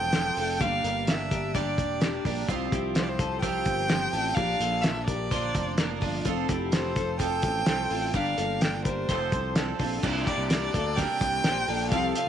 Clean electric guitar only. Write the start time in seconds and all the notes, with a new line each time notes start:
Already playing: A4 C5
0.14 A4 C5
0.37 F4 A4
0.61 D4 G4
0.84 G4 A#4
1.31 G4 A#4
1.55 D4 G4
2.02 D4 G4
2.25 G4 A#4
2.49 C4 F4
2.72 E4 G4
3.19 F4 A4
3.42 G4 A#4
3.90 G4 C5
4.13 F4 A4
4.37 D4 G4
4.60 F4 A4
5.08 G4 A#4
5.31 F4 C5
5.78 A#4 D5
6.02 D4 F4
6.26 C4 F4
6.49 E4 G4
6.96 F4 A4
7.20 F4 A4
7.67 A4 C5
7.90 F4 A4
8.14 D4 G4
8.38 F4 A4
8.85 G4 A#4
9.09 A4 C5
9.56 A4 D5
9.79 D4 F4
10.03 D4 F4
10.27 E4 G4
10.74 F4 A4
10.98 G4 A#4
11.45 G4 C5
11.68 F4 A4
11.92 C4 G4
12.15 F4 A4